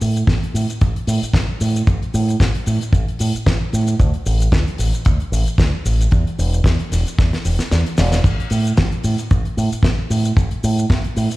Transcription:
0.01 A2, open hi-hat, shaker
0.16 closed hi-hat, shaker
0.27 A1, kick, snare, closed hi-hat, shaker
0.43 closed hi-hat
0.54 A2, open hi-hat, shaker
0.70 closed hi-hat, shaker
0.81 A1, kick, closed hi-hat, shaker
0.96 closed hi-hat
1.07 A2, open hi-hat, shaker
1.22 muted fingered electric bass stroke, closed hi-hat, shaker
1.34 A1, kick, snare, closed hi-hat, shaker
1.60 A2, open hi-hat, shaker
1.76 closed hi-hat, shaker
1.87 A1, kick, closed hi-hat, shaker
2.02 closed hi-hat
2.14 A2, open hi-hat, shaker
2.28 closed hi-hat, shaker
2.40 A1, kick, snare, closed hi-hat, shaker
2.55 closed hi-hat
2.66 A2, open hi-hat, shaker
2.81 closed hi-hat, shaker
2.92 A1, kick, closed hi-hat, shaker
3.08 closed hi-hat
3.19 A2, open hi-hat, shaker
3.34 muted fingered electric bass stroke, closed hi-hat, shaker
3.46 A1, kick, snare, closed hi-hat, shaker
3.73 A2, open hi-hat, shaker
3.87 closed hi-hat, shaker
3.99 D2, kick, closed hi-hat, shaker
4.14 closed hi-hat
4.26 A1, open hi-hat, shaker
4.40 closed hi-hat, shaker
4.52 D2, kick, snare, closed hi-hat, shaker
4.67 closed hi-hat
4.78 A1, open hi-hat, shaker
4.93 closed hi-hat, shaker
5.05 D2, kick, closed hi-hat, shaker
5.20 closed hi-hat
5.32 A1, open hi-hat, shaker
5.46 closed hi-hat, shaker
5.58 D2, kick, snare, closed hi-hat, shaker
5.85 A1, open hi-hat, shaker
6.01 closed hi-hat, shaker
6.11 E2, kick, closed hi-hat, shaker
6.27 closed hi-hat
6.38 E1, open hi-hat, shaker
6.53 closed hi-hat, shaker
6.64 E2, kick, snare, closed hi-hat, shaker
6.79 closed hi-hat
6.92 E1, snare, open hi-hat, shaker
7.07 closed hi-hat, shaker
7.18 E2, kick, snare, closed hi-hat, shaker
7.33 snare, closed hi-hat
7.45 E1, open hi-hat, shaker
7.59 muted fingered electric bass stroke, snare, closed hi-hat, shaker
7.71 E2, snare, closed hi-hat, shaker
7.86 closed hi-hat
7.98 E1, snare, open hi-hat, shaker
8.12 snare, closed hi-hat, shaker
8.24 A1, kick, closed hi-hat, crash, shaker
8.40 closed hi-hat
8.50 A2, open hi-hat, shaker
8.65 closed hi-hat, shaker
8.77 A1, kick, snare, closed hi-hat, shaker
8.92 closed hi-hat
9.04 A2, open hi-hat, shaker
9.18 closed hi-hat, shaker
9.31 A1, kick, closed hi-hat, shaker
9.45 closed hi-hat
9.57 A2, open hi-hat, shaker
9.72 muted fingered electric bass stroke, closed hi-hat, shaker
9.83 A1, kick, snare, closed hi-hat, shaker
10.10 A2, open hi-hat, shaker
10.25 closed hi-hat, shaker
10.37 A1, kick, closed hi-hat, shaker
10.51 closed hi-hat
10.64 A2, open hi-hat, shaker
10.78 closed hi-hat, shaker
10.90 A1, kick, snare, closed hi-hat, shaker
11.04 closed hi-hat
11.16 A2, open hi-hat, shaker
11.31 closed hi-hat, shaker

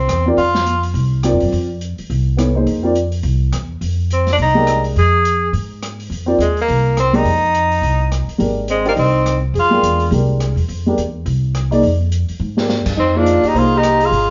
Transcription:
Already playing: C4
0.08 E2, cross-stick, closed hi-hat
0.26 C4 F4 A#4 D5
0.37 F2 F4, open hi-hat
0.55 snare
0.66 closed hi-hat
0.83 open hi-hat
0.94 C2, open hi-hat
1.23 C4 F4 A#4 D5, cross-stick, closed hi-hat
1.33 F2
1.40 F#2, open hi-hat
1.52 F2, open hi-hat
1.81 closed hi-hat
1.98 muted upright bass stroke, open hi-hat
2.10 C2, open hi-hat
2.37 B3 E4 A4 C#5, cross-stick, closed hi-hat
2.55 A#3 D#4 G#4 C5
2.66 F2, open hi-hat
2.83 C4 F4 A#4 D5
2.95 closed hi-hat
3.12 open hi-hat
3.23 C2, open hi-hat
3.53 E2, cross-stick, closed hi-hat
3.81 F2, open hi-hat
4.10 C4, closed hi-hat
4.27 snare, open hi-hat
4.33 D4
4.38 C2, open hi-hat
4.42 D#4
4.55 G#3 D4 G4 A#4
4.67 cross-stick, closed hi-hat
4.84 open hi-hat
4.96 F2 G#4, open hi-hat
5.25 closed hi-hat
5.53 G#2, open hi-hat
5.83 cross-stick, closed hi-hat
6.00 open hi-hat
6.10 F2, open hi-hat
6.26 C4 F4 A#4 D5
6.38 D#2 G#3, closed hi-hat
6.57 open hi-hat
6.61 A#3
6.68 C2, open hi-hat
6.97 C4, cross-stick, closed hi-hat
7.13 G#3 D4 D#4 G4 A#4, open hi-hat
7.24 F2, open hi-hat
7.54 closed hi-hat
7.72 open hi-hat
7.82 C2, open hi-hat
8.12 cross-stick, closed hi-hat
8.28 muted upright bass stroke, open hi-hat
8.38 G#1 G#3 D4 G4 A#4, open hi-hat
8.68 G#3 C4, closed hi-hat
8.85 A#3 D4 G4 C5 D#5, open hi-hat
8.95 C2 C4 D#4, open hi-hat
9.26 cross-stick, closed hi-hat
9.54 F2 G#4, open hi-hat
9.59 F4
9.71 G#3 D4 A#4 G5
9.82 E2, closed hi-hat
10.00 open hi-hat
10.11 C2 G#3 D4 G4 A#4, open hi-hat
10.40 cross-stick, closed hi-hat
10.56 E2, open hi-hat
10.68 F2, open hi-hat
10.86 G#3 D4 G4 A#4
10.97 E2, closed hi-hat
11.26 C2, open hi-hat
11.55 cross-stick, closed hi-hat
11.71 A#3 D#4 G#4 D5, open hi-hat
11.83 F2, open hi-hat
12.12 closed hi-hat
12.29 muted upright bass stroke, open hi-hat
12.40 G#2
12.57 G#3 D4 G4 A#4, snare
12.69 snare
12.85 G2, kick, crash
12.96 F2 C4 D#4
13.14 A#3 D#4 F4 G#4 C5
13.18 D4
13.26 closed hi-hat
13.43 G4, muted upright bass stroke, open hi-hat
13.48 D#4
13.53 C2 A#3 D#4 G#4 C5, open hi-hat
13.58 F4
13.75 D#4 G4
13.83 cross-stick, closed hi-hat
14.00 G#4, open hi-hat
14.05 F4
14.11 G#1, open hi-hat

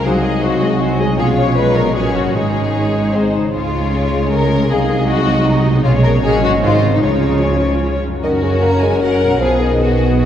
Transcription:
Already playing: C3 G#3 F#4
0.00 C2 D#4 C5 D#5 F5
0.04 C2 F#3 F#4 G#4
0.23 G#3 G#4 D#5
0.42 F#3 F#4 C5 D#5
0.61 G#3 G#4 D#5
0.81 F#3 F#4 C5 G#5
1.00 B2 G#3 G#4 D#5
1.06 C#4
1.11 F4
1.15 B1 G#3 G#4 C#5
1.19 B2 F3 C#4 F4 F5
1.38 C#5
1.56 G#3 F4 B4 C#5 D#5
1.75 A#2 A#4
1.83 C#4
1.87 F#4
1.92 A#2 C#5
1.96 A#1 F#3 C#4 F#4 G#4 C#5
2.15 G#2 F#4
2.27 D#4
2.31 G#1 G#2 G#4 D#5
2.35 D#3 G#3 D#4 C#5
2.96 G#2
3.01 C4
3.05 D#4
3.10 G#4
3.14 G#3 C4 D#4 G#4 C5
3.36 C#3
3.41 G#3
3.45 C#4
3.50 G#4
3.54 C#2 C#3 G#3 C#4 F4 G#4 C#5
3.93 C#5
4.32 A#4 C#5
4.52 C3
4.56 G#3
4.61 D#4
4.65 G#4
4.69 C2 C3 F#3 D#4 G#4 D#5 F5
5.08 F#4 D#5
5.46 D#4
5.67 B2
5.71 G#3
5.76 C#4
5.80 G#4
5.84 B1 B2 G#3 C#4 F4 G#4 C#5
6.03 A#2 A#4
6.10 A#3
6.14 C#4
6.19 F#4
6.23 A#1 A#2 F#3 C#4 F#4 G#4 D#5
6.44 G#2 F#4
6.49 C4
6.53 D#4
6.58 G#4
6.62 G#1 G#2 D#3 G#3 C4 D#4 F4 C5
6.84 C#3
6.89 C#4
6.93 D#4 F4
6.98 G#4
7.02 C#2 C#3 F3 C#4 D#4 F4 C#5
7.43 C#4
8.05 F#2
8.10 C#4
8.14 F#4
8.19 F#2 A#4
8.23 F#1 D#3 C#4 F#4 A#4 D#5
8.43 C#3 C#5
8.62 A#3 A#5
8.82 G#3 G#5
9.01 F#3 A#4 F#5
9.23 B2
9.28 G#3
9.32 F#4
9.36 B4
9.40 B1 B2 F3 B3 G#4 F5
9.60 D#3 D#5
9.81 F#4
10.18 F#4

